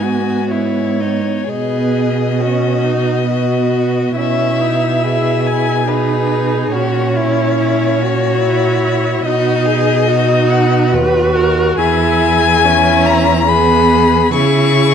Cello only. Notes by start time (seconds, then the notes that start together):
Already playing: G#2
1.49 B2
4.17 B2
6.73 A#2
9.25 B2
10.92 D#2
11.79 E2
14.34 C#3